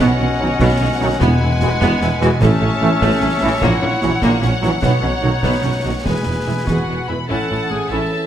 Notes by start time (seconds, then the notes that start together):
Already playing: F#5
0.00 B2 B3 C#4 C#5 D#5
0.20 B1 B2 C#4
0.39 B1 B2 D#3 F#3 C#4 D#4 F#4
0.59 B1 B2 B3, concert bass drum, snare
0.80 B1 B2 C#4
1.00 B1 B2 D#3 F#3 C#4 D#4 F#4
1.20 E1 E2 G#3 B3 B4 F#5 G#5, concert bass drum, snare
1.40 E1 E2 E4
1.60 E1 E2 E3 G#3 B3 F#4, snare
1.80 E1 E2 B3, concert bass drum, snare
2.01 E1 E2 E4, snare
2.20 E1 E2 E3 G#3 B3 F#4, snare
2.41 A1 A2 A3 C#4 C#5 E5 A5, concert bass drum, snare, crash
2.61 A1 A2 C#4
2.81 A1 A2 E3 A3 C#4 E4
3.01 A1 A2 A3, concert bass drum, snare
3.20 A1 A2 C#4
3.41 A1 A2 E3 A3 C#4 E4
3.61 A#1 A#2 A#3 E4 F#5, concert bass drum, snare
3.82 A#1 A#2 C#4
4.02 A#1 A#2 E3 F#3 C#4 E4 F#4, snare
4.22 A#1 A#2 A#3, concert bass drum, snare
4.42 A#1 A#2 C#4, snare
4.62 A#1 A#2 E3 F#3 C#4 E4 F#4, snare
4.81 B1 B2 B3 D#4 C#5, concert bass drum, snare
5.02 B1 B2 C#4
5.22 B1 B2 D#3 F#3 C#4 D#4 F#4
5.43 B1 B2 B3, concert bass drum, snare
5.63 B1 B2 C#4
5.83 B1 B2 D#3 F#3 C#4 D#4 F#4
6.04 E1 E2 G#3 G#4 B4 G#5, concert bass drum, snare
6.25 E1 E2 B3
6.46 E1 E2 E3 G#3 B3 E4
6.66 E1 E2 G#3 F#4 F#5, concert bass drum, snare
6.88 E1 E2 B3
7.08 E1 E2 E3 G#3 B3 E4 B4 B5
7.28 A1 A2 E3 C#4 E4 A4 F#5 A5
7.50 A1 A2 C#4 E4
7.70 A1 A2 A3 C#4 G#4 G#5
7.89 A1 A2 E3 C#4 E4 A4 E5 A5